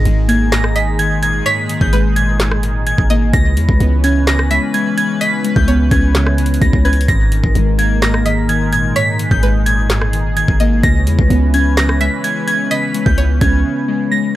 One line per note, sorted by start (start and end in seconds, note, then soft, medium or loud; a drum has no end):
0.00 0.51 G#2 loud
0.00 0.74 D#3 medium
0.00 3.30 G#3 medium
0.00 3.30 D#4 medium
0.00 3.30 G#4 medium
0.05 1.42 G#1 loud
0.05 1.23 G#3 medium
0.05 closed hi-hat medium
0.28 1.46 A#3 loud
0.28 0.48 G#6 medium
0.28 closed hi-hat medium
0.52 1.45 G#2 medium
0.52 0.72 A#6 medium
0.52 snare loud
0.52 clap loud
0.52 closed hi-hat medium
0.64 cross-stick loud
0.76 0.98 D#3 medium
0.76 1.42 D#5 medium
0.76 0.95 B6 medium
0.76 closed hi-hat medium
0.99 1.68 D#3 loud
0.99 1.19 G#6 medium
0.99 closed hi-hat medium
1.23 2.15 A#2 medium
1.23 1.42 G#6 medium
1.23 closed hi-hat medium
1.46 2.38 G#2 medium
1.46 1.90 C#5 loud
1.46 1.79 B6 loud
1.46 closed hi-hat medium
1.69 2.62 D#3 medium
1.69 closed hi-hat medium
1.81 2.94 G#1 loud
1.81 2.14 G6 medium
1.81 kick medium
1.93 3.10 G#3 medium
1.93 3.06 B4 medium
1.93 closed hi-hat medium
2.16 3.34 A#2 medium
2.16 2.83 G#6 medium
2.16 closed hi-hat medium
2.39 3.33 G#2 medium
2.39 snare loud
2.39 clap loud
2.39 closed hi-hat medium
2.52 cross-stick loud
2.63 2.85 D#3 medium
2.63 closed hi-hat medium
2.86 3.33 D#3 medium
2.86 3.31 G#6 medium
2.86 closed hi-hat medium
2.98 3.32 G#1 loud
2.98 kick medium
3.10 3.34 A#3 medium
3.10 3.32 D#5 medium
3.10 closed hi-hat medium
3.33 3.59 C#2 loud
3.33 4.26 C#3 medium
3.33 7.05 E3 medium
3.33 7.05 C#4 medium
3.33 7.05 B4 medium
3.33 3.78 A#6 loud
3.33 kick loud
3.33 closed hi-hat medium
3.57 3.68 E2 loud
3.57 4.49 G#3 medium
3.57 closed hi-hat medium
3.69 3.80 C#2 loud
3.69 kick medium
3.80 4.59 C#2 loud
3.80 4.97 B3 medium
3.80 closed hi-hat medium
4.04 4.96 C#4 medium
4.04 4.24 G#6 medium
4.04 closed hi-hat medium
4.27 5.20 C#3 medium
4.27 4.47 A#6 medium
4.27 snare loud
4.27 clap loud
4.27 closed hi-hat medium
4.39 cross-stick loud
4.50 4.73 G#3 medium
4.50 5.17 E5 medium
4.50 4.70 B6 medium
4.50 closed hi-hat medium
4.74 5.43 G#3 medium
4.74 4.94 G#6 medium
4.74 closed hi-hat medium
4.97 5.90 C#4 medium
4.97 5.17 G#6 medium
4.97 closed hi-hat medium
5.21 6.14 C#3 medium
5.21 5.65 D#5 medium
5.21 5.54 B6 loud
5.21 closed hi-hat medium
5.44 6.37 G#3 medium
5.44 closed hi-hat medium
5.56 5.90 C#2 loud
5.56 5.89 G6 medium
5.56 kick medium
5.68 6.85 B3 medium
5.68 6.81 C#5 medium
5.68 closed hi-hat medium
5.91 6.59 C#2 loud
5.91 6.84 C#4 medium
5.91 6.58 G#6 medium
5.91 kick medium
5.91 closed hi-hat medium
6.15 7.09 C#3 medium
6.15 snare loud
6.15 clap loud
6.15 closed hi-hat medium
6.27 cross-stick loud
6.38 6.60 G#3 medium
6.38 closed hi-hat medium
6.46 closed hi-hat medium
6.54 closed hi-hat medium
6.62 6.73 C#2 loud
6.62 7.09 G#3 loud
6.62 6.81 A#6 medium
6.62 kick loud
6.62 closed hi-hat medium
6.73 7.07 C#2 loud
6.73 kick medium
6.85 7.08 C#4 medium
6.85 7.07 B4 medium
6.85 7.05 G#6 medium
6.85 closed hi-hat soft
6.93 closed hi-hat medium
7.01 closed hi-hat medium
7.08 7.42 G#1 loud
7.08 8.01 G#2 loud
7.08 10.80 G#3 medium
7.08 10.80 D#4 medium
7.08 8.94 A#4 medium
7.08 7.52 A#6 loud
7.08 kick loud
7.08 closed hi-hat medium
7.32 8.24 D#3 medium
7.32 closed hi-hat medium
7.44 7.55 G#1 loud
7.44 kick medium
7.55 8.92 G#1 loud
7.55 8.73 G#3 medium
7.55 closed hi-hat medium
7.78 8.96 A#3 loud
7.78 7.98 G#6 medium
7.78 closed hi-hat medium
8.02 8.95 G#2 medium
8.02 8.22 A#6 medium
8.02 snare loud
8.02 clap loud
8.02 closed hi-hat medium
8.14 cross-stick loud
8.26 8.48 D#3 medium
8.26 8.92 D#5 medium
8.26 8.45 B6 medium
8.26 closed hi-hat medium
8.49 9.18 D#3 loud
8.49 8.69 G#6 medium
8.49 closed hi-hat medium
8.73 9.65 A#2 medium
8.73 8.92 G#6 medium
8.73 closed hi-hat medium
8.96 9.88 G#2 medium
8.96 10.82 G#4 medium
8.96 9.40 C#5 loud
8.96 9.29 B6 loud
8.96 closed hi-hat medium
9.19 10.12 D#3 medium
9.19 closed hi-hat medium
9.31 10.44 G#1 loud
9.31 9.64 G6 medium
9.31 kick medium
9.43 10.60 G#3 medium
9.43 10.56 B4 medium
9.43 closed hi-hat medium
9.66 10.84 A#2 medium
9.66 10.33 G#6 medium
9.66 closed hi-hat medium
9.89 10.83 G#2 medium
9.89 snare loud
9.89 clap loud
9.89 closed hi-hat medium
10.02 cross-stick loud
10.13 10.35 D#3 medium
10.13 closed hi-hat medium
10.37 10.84 D#3 medium
10.37 10.81 G#6 medium
10.37 closed hi-hat medium
10.48 10.82 G#1 loud
10.48 kick medium
10.60 10.84 A#3 medium
10.60 10.82 D#5 medium
10.60 closed hi-hat medium
10.83 11.08 C#2 loud
10.83 11.77 C#3 loud
10.83 14.36 E3 medium
10.83 14.36 C#4 medium
10.83 14.36 B4 medium
10.83 11.28 A#6 loud
10.83 kick loud
10.83 closed hi-hat medium
11.07 11.18 E2 loud
11.07 11.99 G#3 medium
11.07 closed hi-hat medium
11.19 11.30 C#2 loud
11.19 kick medium
11.30 12.09 C#2 loud
11.30 12.47 B3 medium
11.30 closed hi-hat medium
11.54 12.46 C#4 medium
11.54 11.74 G#6 medium
11.54 closed hi-hat medium
11.77 12.70 C#3 medium
11.77 11.97 A#6 medium
11.77 snare loud
11.77 clap loud
11.77 closed hi-hat medium
11.89 cross-stick loud
12.01 12.23 G#3 medium
12.01 12.67 E5 medium
12.01 12.20 B6 medium
12.01 closed hi-hat medium
12.24 12.93 G#3 loud
12.24 12.44 G#6 medium
12.24 closed hi-hat medium
12.47 13.40 C#4 medium
12.47 12.67 G#6 loud
12.47 closed hi-hat medium
12.71 13.64 C#3 medium
12.71 13.15 D#5 medium
12.71 13.04 B6 loud
12.71 closed hi-hat medium
12.94 13.87 G#3 medium
12.94 closed hi-hat medium
13.06 13.40 C#2 loud
13.06 13.39 G6 medium
13.06 kick medium
13.18 14.35 B3 medium
13.18 14.31 C#5 medium
13.18 closed hi-hat medium
13.41 13.64 C#2 loud
13.41 14.34 C#4 medium
13.41 14.08 G#6 medium
13.41 kick medium
13.41 closed hi-hat medium
13.65 14.36 C#3 medium
13.88 14.10 G#3 medium
14.12 14.36 G#3 medium
14.12 14.31 A#6 medium